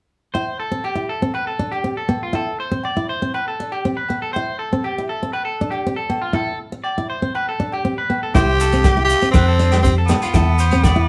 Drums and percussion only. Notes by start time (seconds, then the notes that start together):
0.34 low agogo
0.84 low agogo
1.34 low agogo
1.72 low agogo
2.09 low agogo
2.33 low agogo
2.83 low agogo
3.34 low agogo
3.72 low agogo
4.09 low agogo
4.34 low agogo
4.84 low agogo
5.33 low agogo
5.72 low agogo
6.10 low agogo
6.35 low agogo
6.84 low agogo
7.35 low agogo
7.72 low agogo
8.10 low agogo
8.34 kick, cross-stick, closed hi-hat, low agogo, maracas
8.60 closed hi-hat, maracas
8.72 closed hi-hat, maracas
8.84 kick, cross-stick, closed hi-hat, low agogo, maracas
9.09 closed hi-hat, maracas
9.21 closed hi-hat
9.34 kick, cross-stick, closed hi-hat, low agogo, maracas
9.59 closed hi-hat
9.72 cross-stick, closed hi-hat, low agogo, maracas
9.84 kick, closed hi-hat, maracas
10.08 cross-stick, closed hi-hat, low agogo, maracas
10.22 closed hi-hat, maracas
10.33 kick, cross-stick, closed hi-hat, low agogo, maracas
10.58 closed hi-hat, maracas
10.71 closed hi-hat, maracas
10.83 kick, cross-stick, closed hi-hat, low agogo, maracas